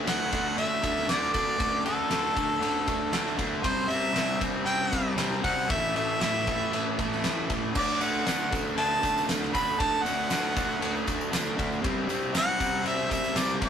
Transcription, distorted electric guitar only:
0.06 0.31 D3 loud
0.06 0.31 A3 loud
0.06 0.32 D4 loud
0.31 0.55 D3 medium
0.31 0.56 A3 medium
0.31 0.56 D4 medium
0.57 0.81 D3 loud
0.57 0.82 A3 loud
0.57 0.83 D4 loud
0.82 1.06 D3 medium
0.82 1.07 A3 loud
0.82 1.08 D4 loud
1.07 1.32 D3 medium
1.07 1.33 A3 medium
1.07 1.34 D4 medium
1.33 1.58 D3 medium
1.33 1.58 A3 loud
1.33 1.59 D4 medium
1.59 1.83 D3 loud
1.59 1.85 A3 loud
1.59 1.85 D4 loud
1.84 2.08 D3 medium
1.84 2.09 A3 medium
1.84 2.10 D4 medium
2.09 2.33 D3 loud
2.09 2.34 A3 loud
2.09 2.35 D4 loud
2.35 2.59 D3 medium
2.35 2.60 A3 medium
2.35 2.62 D4 loud
2.61 2.86 D3 loud
2.61 2.87 A3 loud
2.61 2.87 D4 loud
2.87 3.11 D3 medium
2.87 3.11 A3 medium
2.87 3.12 D4 loud
3.12 3.36 D3 loud
3.12 3.37 A3 loud
3.12 3.38 D4 medium
3.37 3.62 D3 loud
3.37 3.63 A3 loud
3.37 3.63 D4 loud
3.63 3.86 C3 medium
3.63 3.87 G3 loud
3.63 3.88 C4 loud
3.87 4.11 C3 medium
3.87 4.12 G3 medium
3.87 4.13 C4 medium
4.12 4.37 C3 medium
4.12 4.38 G3 loud
4.12 4.39 C4 loud
4.38 4.63 C3 medium
4.38 4.64 G3 medium
4.38 4.65 C4 loud
4.64 4.90 C3 loud
4.64 4.91 G3 loud
4.64 4.91 C4 loud
4.91 5.15 C3 medium
4.91 5.16 G3 loud
4.91 5.17 C4 loud
5.16 5.41 C3 medium
5.16 5.42 G3 medium
5.16 5.43 C4 loud
5.42 5.68 C3 loud
5.42 5.68 G3 loud
5.42 5.69 C4 loud
5.68 5.93 A2 medium
5.68 5.94 E3 loud
5.68 5.96 A3 loud
5.94 6.19 A2 medium
5.94 6.20 E3 medium
5.94 6.22 A3 medium
6.21 6.46 A2 loud
6.21 6.47 E3 loud
6.21 6.49 A3 loud
6.48 6.72 A2 medium
6.48 6.72 E3 medium
6.48 6.74 A3 loud
6.73 6.97 A2 medium
6.73 6.98 E3 loud
6.73 6.99 A3 loud
6.98 7.23 A2 loud
6.98 7.24 E3 medium
6.98 7.26 A3 loud
7.24 7.49 A2 medium
7.24 7.49 E3 loud
7.24 7.51 A3 loud
7.50 7.74 A2 medium
7.50 7.74 E3 loud
7.50 7.75 A3 loud
7.74 7.99 D3 loud
7.74 8.00 A3 loud
7.74 8.01 D4 loud
7.99 8.24 D3 medium
7.99 8.26 A3 medium
7.99 8.26 D4 medium
8.24 8.50 D3 medium
8.24 8.51 A3 loud
8.24 8.52 D4 loud
8.50 8.75 D3 medium
8.50 8.77 A3 medium
8.50 8.77 D4 medium
8.76 9.01 D3 loud
8.76 9.02 A3 loud
8.76 9.02 D4 loud
9.02 9.26 D3 loud
9.02 9.27 A3 loud
9.02 9.27 D4 loud
9.27 9.51 D3 loud
9.27 9.52 A3 loud
9.27 9.53 D4 loud
9.52 9.77 D3 loud
9.52 9.78 A3 medium
9.52 9.79 D4 loud
9.78 10.04 D3 loud
9.78 10.04 A3 loud
9.78 10.05 D4 loud
10.05 10.28 D3 medium
10.05 10.29 A3 loud
10.05 10.30 D4 loud
10.29 10.53 D3 loud
10.29 10.55 A3 loud
10.29 10.55 D4 loud
10.54 10.79 D3 medium
10.54 10.80 A3 medium
10.54 10.81 D4 loud
10.80 11.04 D3 loud
10.80 11.05 A3 loud
10.80 11.06 D4 loud
11.06 11.30 D3 loud
11.06 11.31 A3 medium
11.06 11.32 D4 loud
11.32 11.55 D3 medium
11.32 11.56 A3 loud
11.32 11.57 D4 loud
11.57 11.81 D3 loud
11.57 11.82 A3 loud
11.57 11.82 D4 loud
11.82 12.07 C3 loud
11.82 12.07 G3 loud
11.82 12.09 C4 loud
12.08 12.32 C3 medium
12.08 12.33 G3 loud
12.08 12.33 C4 medium
12.33 12.57 C3 loud
12.33 12.58 G3 loud
12.33 12.59 C4 loud
12.58 12.82 C3 medium
12.58 12.83 G3 medium
12.58 12.84 C4 loud
12.83 13.08 C3 loud
12.83 13.09 G3 loud
12.83 13.10 C4 loud
13.09 13.35 C3 medium
13.09 13.36 G3 loud
13.09 13.36 C4 loud
13.36 13.60 C3 medium
13.36 13.61 G3 loud
13.36 13.62 C4 loud
13.61 13.69 C3 medium
13.61 13.69 G3 loud
13.61 13.69 C4 loud

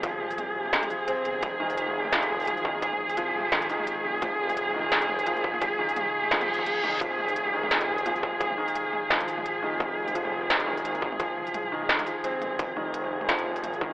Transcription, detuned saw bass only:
0.00 0.37 G#1 loud
0.38 0.72 C2 medium
1.25 1.42 G1 loud
1.43 2.46 F1 loud
2.47 3.16 G#1 loud
3.17 3.51 C2 loud
3.52 4.03 G#1 loud
4.05 4.21 F1 loud
4.22 5.25 F1 loud
5.27 5.95 G#1 loud
5.96 6.30 C2 loud
6.32 6.65 F1 medium
6.66 7.00 F1 loud
7.01 8.05 F1 loud
8.06 8.74 G#1 loud
8.75 9.09 C2 loud
9.10 9.61 G#1 loud
9.62 9.79 F1 loud
9.80 10.84 F1 loud
10.85 11.34 G#1 loud
11.34 11.53 G1 loud
11.54 11.88 C2 loud
12.42 12.58 G1 loud
12.59 13.63 F1 loud
13.64 13.93 G#1 loud

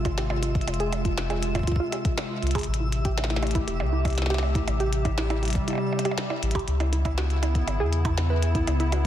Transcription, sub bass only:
0.00 0.62 G#1 medium
0.68 1.62 F1 loud
2.42 2.61 C2 medium
2.68 3.62 A1 loud
3.67 3.81 E1 loud
3.80 4.62 C2 medium
4.67 5.62 A1 loud
6.43 6.61 A1 medium
6.68 7.62 C#2 loud
7.68 7.82 G#1 loud
7.80 8.62 E2 medium
8.67 9.07 C#2 loud

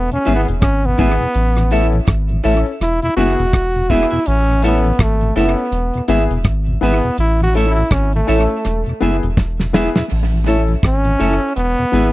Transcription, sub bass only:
0.27 0.46 G#1 medium
0.49 0.61 E1 medium
0.63 0.95 G#1 medium
0.99 1.18 G#1 medium
1.35 2.00 A1 loud
2.08 2.41 G#1 medium
2.45 2.64 A1 medium
2.81 3.00 E1 loud
3.17 3.36 F#1 medium
3.39 3.52 E1 medium
3.54 4.05 E1 loud
4.27 4.92 A1 loud
4.99 5.32 G#1 loud
5.36 5.55 F#1 loud
5.72 5.91 E1 loud
6.08 6.28 G#1 medium
6.30 6.44 E1 medium
6.45 6.78 G#1 medium
6.82 7.01 G#1 medium
7.18 7.83 A1 loud
7.91 8.24 G#1 medium
8.28 8.47 A1 medium
8.65 8.84 E1 loud
9.02 9.20 F#1 medium
9.23 9.36 E1 loud
9.37 9.89 E1 medium
10.12 10.76 A1 loud
10.84 11.16 G#1 medium
11.20 11.39 F#1 medium
11.57 11.75 E1 loud
11.93 12.12 G#1 medium

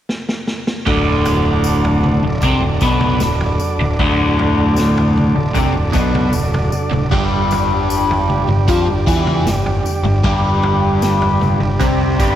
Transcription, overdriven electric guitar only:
0.86 2.22 D2 medium
0.86 2.22 D3 loud
2.24 2.43 D2 medium
2.43 2.61 C3 medium
2.43 2.62 C4 loud
2.63 2.82 D2 medium
2.82 3.20 B2 medium
2.82 3.20 B3 loud
3.23 3.53 D2 medium
3.81 3.98 D2 medium
3.99 5.34 D2 loud
3.99 5.35 D3 loud
5.36 5.54 D2 medium
5.54 5.73 C3 medium
5.54 5.74 C4 loud
5.75 5.93 D2 medium
5.93 6.32 B2 medium
5.93 6.32 B3 loud
6.33 6.64 D2 medium
6.91 7.11 D2 medium
7.11 8.47 G2 medium
7.11 8.47 G3 medium
8.49 8.68 G2 medium
8.68 8.86 F3 medium
8.68 8.87 F4 loud
8.88 9.07 G2 medium
9.07 9.45 E3 loud
9.07 9.45 E4 loud
9.47 9.78 G2 medium
10.05 10.23 G2 medium
10.24 11.59 G2 loud
10.24 11.59 G3 loud
11.61 11.79 G2 medium
11.80 12.18 C3 loud
11.80 12.18 C4 loud
12.19 12.35 G2 medium
12.19 12.35 G3 medium

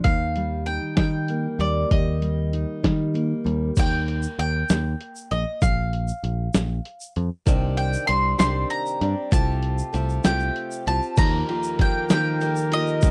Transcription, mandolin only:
0.04 0.66 F5 medium
0.66 0.96 G5 medium
0.97 1.61 G5 medium
1.60 1.91 D5 medium
1.91 3.41 D#5 medium
3.79 4.38 G5 medium
4.39 5.34 G5 medium
5.31 5.63 D#5 medium
5.62 7.12 F5 medium
7.77 8.07 G5 medium
8.07 8.38 C6 medium
8.39 8.70 C6 loud
8.70 9.32 A#5 medium
9.33 10.21 A5 medium
10.25 10.87 G5 loud
10.88 11.18 A5 medium
11.18 11.81 A#5 loud
11.81 12.09 G5 medium
12.11 12.74 G5 loud
12.73 13.11 D#5 medium

